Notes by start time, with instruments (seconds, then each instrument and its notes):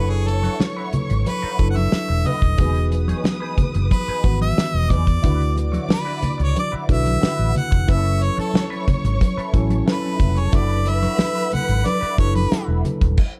Already playing: fingered electric bass F#1, tine electric piano F#3 D4 E4 A4 B4, clean electric guitar E4 F#4 B4, harmonica B4, violin section C#5 C#6
0.10 harmonica G#4
0.27 harmonica A4, muted clean electric guitar stroke, closed hi-hat, muted conga
0.43 clean electric guitar E4 F#4 C#5, closed hi-hat, high conga
0.60 muted clean electric guitar stroke, snare, closed hi-hat, high conga
0.77 clean electric guitar E4 F#4 B4
0.93 muted fingered electric bass stroke, muted clean electric guitar stroke, closed hi-hat, low conga
1.10 fingered electric bass G#1, muted clean electric guitar stroke, closed hi-hat
1.26 harmonica B4, muted clean electric guitar stroke, closed hi-hat, high conga
1.42 clean electric guitar E4 F#4 B4, muted fingered electric bass stroke
1.59 fingered electric bass F#1, tine electric piano F#3 D4 E4 A4 B4, muted clean electric guitar stroke, kick, closed hi-hat
1.70 harmonica F#5
1.76 harmonica E5, muted clean electric guitar stroke, closed hi-hat, high conga
1.92 snare, closed hi-hat
2.09 fingered electric bass E1, muted clean electric guitar stroke
2.25 clean electric guitar E4 F#4 B4, harmonica D#5, open hi-hat, low conga
2.41 fingered electric bass D#1, muted clean electric guitar stroke, kick, closed hi-hat
2.58 fingered electric bass E1, tine electric piano E3 B3 D#4 F#4 G#4, clean electric guitar D#4 G#4 B4, violin section B4 D#6, kick, closed hi-hat, muted conga, low conga
2.74 closed hi-hat
2.91 muted clean electric guitar stroke, closed hi-hat, muted conga
3.08 clean electric guitar D#4 G#4 C#5, closed hi-hat, high conga
3.24 muted clean electric guitar stroke, snare, closed hi-hat, muted conga, high conga
3.40 clean electric guitar D#4 G#4 B4
3.58 muted clean electric guitar stroke, muted fingered electric bass stroke, kick, closed hi-hat, muted conga, low conga
3.74 fingered electric bass F#1, muted clean electric guitar stroke, closed hi-hat
3.91 harmonica B4, muted clean electric guitar stroke, kick, closed hi-hat, muted conga, high conga
4.08 clean electric guitar D#4 G#4 B4, muted fingered electric bass stroke
4.23 fingered electric bass G#1, tine electric piano D#3 E3 B3 F#4 B4, muted clean electric guitar stroke, kick, closed hi-hat, muted conga
4.41 harmonica E5, muted clean electric guitar stroke, closed hi-hat, high conga
4.57 muted clean electric guitar stroke, muted fingered electric bass stroke, snare, closed hi-hat
4.74 fingered electric bass E1, harmonica D#5
4.90 fingered electric bass E2, clean electric guitar D#4 G#4 B4, harmonica D5, kick, closed hi-hat, muted conga, high conga, low conga
5.07 muted clean electric guitar stroke, kick, closed hi-hat
5.22 fingered electric bass D2, tine electric piano D3 D4 E4 F#4 B4, clean electric guitar E4 F#4 B4, violin section D5 D6, kick, closed hi-hat, muted conga, low conga
5.41 closed hi-hat
5.55 muted clean electric guitar stroke, closed hi-hat, muted conga
5.72 clean electric guitar E4 F#4 C#5, closed hi-hat, high conga
5.89 harmonica B4, muted clean electric guitar stroke, snare, closed hi-hat, muted conga, high conga
6.05 clean electric guitar E4 F#4 B4
6.21 muted clean electric guitar stroke, muted fingered electric bass stroke, closed hi-hat, muted conga, low conga
6.38 fingered electric bass C#2, muted clean electric guitar stroke, closed hi-hat
6.43 harmonica C#5
6.55 harmonica D5, muted clean electric guitar stroke, closed hi-hat, high conga
6.72 clean electric guitar E4 F#4 B4, muted fingered electric bass stroke
6.88 fingered electric bass B1, tine electric piano D3 D4 E4 F#4 B4, muted clean electric guitar stroke, kick, closed hi-hat
6.92 harmonica E5
7.05 muted clean electric guitar stroke, closed hi-hat, high conga
7.21 clean electric guitar E4 F#4 B4, muted fingered electric bass stroke, snare, closed hi-hat
7.38 fingered electric bass A1, closed hi-hat
7.54 harmonica F#5, muted clean electric guitar stroke, closed hi-hat, muted conga, low conga
7.71 fingered electric bass F1, muted clean electric guitar stroke, kick, closed hi-hat
7.88 fingered electric bass F#1, tine electric piano F#3 C#4 E4 A4 B4 G#5, clean electric guitar E4 A4 B4, violin section C#5 C#6, harmonica E5, kick, closed hi-hat, low conga
8.21 harmonica C#5, muted clean electric guitar stroke, closed hi-hat
8.37 clean electric guitar E4 A4 C#5, harmonica A4, muted fingered electric bass stroke, closed hi-hat, high conga
8.54 muted clean electric guitar stroke, snare, closed hi-hat, high conga
8.70 clean electric guitar E4 A4 B4, closed hi-hat
8.87 muted clean electric guitar stroke, muted fingered electric bass stroke, kick, closed hi-hat, muted conga, low conga
9.04 fingered electric bass G#1, muted clean electric guitar stroke, closed hi-hat
9.21 muted clean electric guitar stroke, kick, closed hi-hat, muted conga, high conga
9.37 clean electric guitar E4 A4 B4, muted fingered electric bass stroke, closed hi-hat
9.54 fingered electric bass A1, tine electric piano F#3 C#4 E4 A4 C#5 G#5, muted clean electric guitar stroke, kick, closed hi-hat
9.70 muted clean electric guitar stroke, closed hi-hat, high conga
9.86 clean electric guitar E4 A4 B4, snare, closed hi-hat
9.91 harmonica B4
10.03 violin section C#4 C#5
10.12 violin section D#4 D#5
10.20 fingered electric bass F1, violin section E4 E5, kick, closed hi-hat, muted conga, low conga
10.28 violin section F#4 F#5
10.35 violin section G#4 G#5, harmonica C#5, muted clean electric guitar stroke, closed hi-hat
10.45 violin section A4 A5
10.52 fingered electric bass F#1, tine electric piano F#3 D4 E4 A4 B4, clean electric guitar E4 F#4 B4, violin section B4 B5, harmonica D5, kick, closed hi-hat, low conga
10.69 closed hi-hat
10.86 harmonica E5, muted clean electric guitar stroke, closed hi-hat, muted conga
11.02 clean electric guitar E4 F#4 C#5, closed hi-hat, high conga
11.19 muted clean electric guitar stroke, snare, closed hi-hat, muted conga, high conga
11.35 clean electric guitar E4 F#4 B4, closed hi-hat
11.52 harmonica F#5, muted clean electric guitar stroke, muted fingered electric bass stroke, closed hi-hat, muted conga, low conga
11.68 fingered electric bass G#1, muted clean electric guitar stroke, closed hi-hat
11.84 harmonica D5, muted clean electric guitar stroke, closed hi-hat, muted conga, high conga
12.01 clean electric guitar E4 F#4 B4, muted fingered electric bass stroke, closed hi-hat
12.18 fingered electric bass F#1, tine electric piano F#3 D4 E4 A4 B4, harmonica C#5, muted clean electric guitar stroke, kick, closed hi-hat, muted conga
12.35 harmonica B4, muted clean electric guitar stroke, closed hi-hat, high conga
12.52 clean electric guitar E4 F#4 B4, muted fingered electric bass stroke, snare, closed hi-hat
12.68 fingered electric bass E1
12.85 muted clean electric guitar stroke, closed hi-hat, muted conga, low conga
13.01 fingered electric bass D#1, muted clean electric guitar stroke, kick, closed hi-hat
13.17 kick, crash